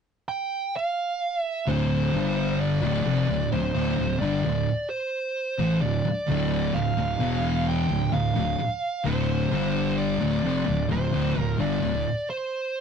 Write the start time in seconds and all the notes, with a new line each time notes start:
0.28 G5
0.76 F5
1.40 E5
1.67 D1 D2 A2 D3 C5
2.13 G1 G2 D3 G3
2.60 D5
2.82 D1 D2 A2
3.05 F1 F2 C3
3.28 D1 D2 A2
3.52 D1 D2 A2 C5
3.75 D1 D2 A2
3.97 D1 D2 A2
4.19 G1 G2 D3 D5
4.44 D1 D2 A2
4.90 C5
5.59 A1 A2 E3
5.81 D1 D2 A2 D5
6.05 muted fingered electric bass stroke, muted distorted electric guitar stroke
6.29 D1 D2 A2 D3
6.74 D1 D2 A2 F5
6.97 D1 D2 A2
7.20 E1 E2 B2 E3
7.69 G5
7.89 D1 D2 A2
8.13 D1 D2 A2 F5
8.36 D1 D2 A2
8.59 muted distorted electric guitar stroke, muted fingered electric bass stroke
9.04 D1 D2 A2 D3 C5
9.51 G1 G2 D3 G3
9.98 D5
10.20 D1 D2 A2
10.43 F1 F2 C3
10.66 D1 D2 A2
10.89 D1 D2 A2 C5
11.12 D1 D2 A2
11.36 D1 D2 A2 A#4
11.58 G1 G2 D3 D5
11.82 D1 D2 A2
12.30 C5